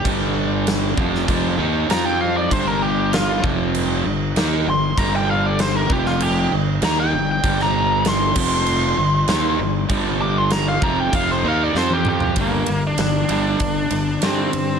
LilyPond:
<<
  \new Staff \with { instrumentName = "Lead electric guitar" } { \time 4/4 \key g \minor \tempo 4 = 97 r2. bes''16 g''16 f''16 d''16 | c''16 bes'16 g'8 f'8 r2 c'''8 | bes''16 g''16 f''16 d''16 c''16 bes'16 g'16 f'16 g'8 r8 bes''16 g''8 g''16~ | g''16 bes''8. c'''2. |
r8 d'''16 c'''16 bes''16 f''16 bes''16 g''16 f''16 c''16 f''16 d''16 c''16 g'16 g'8 | bes8. d'8. d'4. c'4 | }
  \new Staff \with { instrumentName = "Distorted electric guitar" } { \clef bass \time 4/4 \key g \minor <g, d g>4. <f, c f>8 <f, c f>8 <ees bes ees'>8 <f c' f'>4 | <g, d g>4. <f, c f>4 <g, d>8 <ees bes ees'>8 <g, d>8 | <g, d g>4. <f, c f>4 <g, d>8 <ees bes ees'>8 <g, d>8 | <g, d g>4. <f, c f>4 <g, d>8 <ees bes ees'>8 <g, d>8 |
<g, d g>4. <f, c f>8 <f, c f>8 <ees bes ees'>8 <f c' f'>4 | <g, d g>8 <g, d>8 <g, d>8 <g, d g>8 <g, d>8 <g, d>8 <g, d g>8 <g, d>8 | }
  \new Staff \with { instrumentName = "Overdriven electric guitar" } { \clef bass \time 4/4 \key g \minor <g, d g>4. <f, c f>8 <f, c f>8 <ees bes ees'>8 <f c' f'>4 | <g, d g>4. <f, c f>4 <g, d>8 <ees bes ees'>8 <g, d>8 | <g, d g>4. <f, c f>4 <g, d>8 <ees bes ees'>8 <g, d>8 | <g, d g>4. <f, c f>4 <g, d>8 <ees bes ees'>8 <g, d>8 |
<g, d g>4. <f, c f>8 <f, c f>8 <ees bes ees'>8 <f c' f'>4 | <g, d g>8 <g, d>8 <g, d>8 <g, d g>8 <g, d>8 <g, d>8 <g, d g>8 <g, d>8 | }
  \new Staff \with { instrumentName = "Fingered electric bass" } { \clef bass \time 4/4 \key g \minor g,,4. f,,8 f,,8 ees,8 f,4 | g,,4. f,,4 g,,8 ees,8 g,,8 | g,,4. f,,4 g,,8 ees,8 g,,8 | g,,4. f,,4 g,,8 ees,8 g,,8 |
g,,4. f,,8 f,,8 ees,8 f,4 | g,,8 g,,8 g,,8 g,,8 g,,8 g,,8 g,8 g,8 | }
  \new DrumStaff \with { instrumentName = "Drums" } \drummode { \time 4/4 <cymc bd>4 <cymc sn>8 bd16 sn16 <cymc bd>4 <cymc sn>4 | <cymc bd>4 <cymc sn>8 bd8 cymc4 <cymc sn>4 | <cymc bd>4 <cymc sn>8 bd16 sn16 cymc4 <cymc sn>4 | <cymc bd>16 sn8. <cymc sn>8 <cymc bd>8 cymc4 <cymc sn>4 |
<cymc bd>4 <cymc sn>8 bd8 <cymc bd>4 sn16 tommh16 toml16 tomfh16 | <bd cymr>8 cymr8 <cymr sn>8 cymr8 <bd cymr>8 cymr8 <cymr sn>8 cymr8 | }
>>